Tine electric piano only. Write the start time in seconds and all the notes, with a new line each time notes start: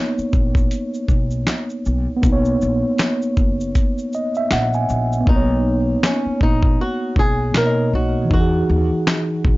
Already playing: A#3 B3 D#4 C#5
2.17 B3
2.22 A#3
2.27 D#4
2.33 C#5
4.15 D#5
4.37 E5
4.53 F#5
4.75 G#5
5.20 B3
5.26 A#3
5.31 D#4
5.36 C#5
7.52 B2 A#3
7.58 D#4 C#5
7.67 D#5
8.24 E3
8.30 D#4
8.35 F#4
8.40 G#4